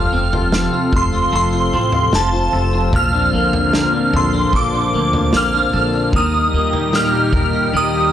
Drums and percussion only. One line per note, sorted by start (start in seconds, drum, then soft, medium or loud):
0.33 floor tom medium
0.52 snare loud
0.93 kick medium
0.93 floor tom medium
1.92 floor tom medium
2.13 snare loud
2.93 kick loud
2.93 floor tom medium
3.53 floor tom medium
3.73 snare medium
4.14 floor tom medium
4.53 kick medium
5.13 floor tom medium
5.33 snare loud
6.13 kick loud
6.13 floor tom loud
6.73 floor tom medium
6.93 snare medium
7.33 kick medium
7.33 floor tom medium